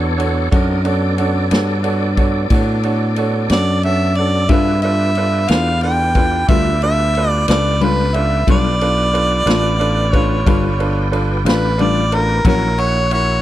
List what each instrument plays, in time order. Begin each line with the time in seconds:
Already playing: fingered electric bass E2, tonewheel organ B3 D4 A4 C#5, upright piano D4 F#4 A4 C#5
0.17 upright piano D4 F#4 A4 C#5, ride
0.51 fingered electric bass F#2, tonewheel organ C4 D#4 A#4 D5, upright piano D4 F#4 A4 C#5, kick, ride
0.85 tonewheel organ B3 D4 A4 D5, upright piano D4 F#4 A4 C#5, ride
1.18 upright piano D4 F#4 A4 C#5, ride
1.51 fingered electric bass G2, upright piano D4 F#4 A4 C#5, snare, ride
1.83 upright piano D4 F#4 A4 C#5, ride
2.17 upright piano D4 F#4 A4 C#5, kick, ride
2.50 fingered electric bass A2, upright piano D4 F#4 A4 C#5, kick, ride
2.83 upright piano D4 F#4 A4 C#5, ride
3.16 upright piano D4 F#4 A4 C#5, ride
3.50 fingered electric bass F#2, upright piano D4 F#4 A4 C#5, harmonica D5, snare, ride
3.83 upright piano D4 F#4 A4 C#5, harmonica E5, ride
4.15 upright piano D4 F#4 A4 C#5, harmonica D5, ride
4.49 fingered electric bass G2, clean electric guitar G3 D4 F4 B4, tonewheel organ C4 F#4 G#4 D5, upright piano D4 F4 A4 B4, harmonica E5, kick, ride
4.82 tonewheel organ B3 F4 G4 D5, upright piano D4 F4 A4 B4, harmonica E5, ride
5.15 upright piano D4 F4 A4 B4, ride
5.48 fingered electric bass E2, upright piano D4 F4 A4 B4, clean electric guitar D4 F4 B4, harmonica F5, snare, ride
5.81 upright piano D4 F4 A4 B4, harmonica G5, ride
6.15 upright piano D4 F4 A4 B4, clean electric guitar D4 F4 B4, kick, ride
6.48 fingered electric bass D2, clean electric guitar G3 D4 F4 B4, upright piano D4 F4 A4 B4, harmonica E5, kick, ride
6.82 upright piano D4 F4 A4 B4, harmonica E5, ride
7.15 upright piano D4 F4 A4 B4, ride
7.29 harmonica D5
7.48 fingered electric bass C#2, upright piano D4 F4 A4 B4, clean electric guitar D4 F4 B4, harmonica D5, snare, ride
7.81 clean electric guitar G3 D4 F4 B4, upright piano D4 F4 A4 B4, harmonica B4, ride
8.14 upright piano D4 F4 A4 B4, harmonica E5, ride
8.47 fingered electric bass B1, clean electric guitar G3 D4 F4 B4, tonewheel organ B3 F4 G4 D5, upright piano D4 F4 A4 B4, harmonica D5, kick, ride
8.81 upright piano D4 F4 A4 B4, ride
9.13 upright piano D4 F4 A4 B4, ride
9.46 fingered electric bass A1, upright piano D4 F4 A4 B4, clean electric guitar F4 B4, snare, ride
9.50 clean electric guitar D4
9.79 upright piano D4 F4 A4 B4, ride
10.12 upright piano D4 F4 A4 B4, clean electric guitar F4 B4, harmonica C#5, kick, ride
10.16 clean electric guitar D4
10.46 fingered electric bass G1, clean electric guitar G3 D4 F4 B4, upright piano D4 F4 A4 B4, kick, ride
10.80 upright piano D4 F4 A4 B4, ride
11.11 upright piano D4 F4 A4 B4, ride
11.45 fingered electric bass A1, upright piano D4 F4 A4 B4, clean electric guitar F4 B4, harmonica B4, snare, ride
11.49 clean electric guitar D4
11.78 clean electric guitar G3 D4, upright piano D4 F4 A4 B4, harmonica D5, ride
11.83 clean electric guitar F4 B4
12.12 upright piano D4 F4 A4 B4, harmonica A#4, ride
12.45 fingered electric bass A#1, clean electric guitar F#3 C#4 E4, tonewheel organ A#3 E4 F#4 C#5, upright piano E4 F#4 A#4 C#5, harmonica A#4, kick, ride
12.49 clean electric guitar A#4
12.78 upright piano E4 F#4 A#4 C#5, harmonica C#5, ride
13.11 upright piano E4 F#4 A#4 C#5, harmonica C#5, ride